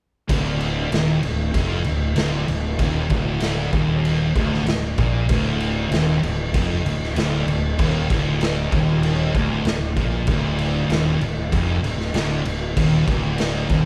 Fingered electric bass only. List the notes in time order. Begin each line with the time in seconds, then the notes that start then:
0.29 D1
0.92 D#1
1.23 D1
1.54 F1
1.86 D1
2.17 D1
2.48 D1
2.79 D#1
3.11 D1
3.73 D#1
4.35 D1
4.67 D1
4.98 A#1
5.29 D1
5.91 D#1
6.23 D1
6.54 F1
6.84 D1
7.15 D1
7.46 D1
7.79 D#1
8.10 D1
8.72 D#1
9.35 D1
9.64 D1
9.97 A#1
10.27 D1
10.89 D#1
11.20 D1
11.52 F1
11.82 D1
12.14 D1
12.46 D1
12.77 D#1
13.08 D1
13.70 D#1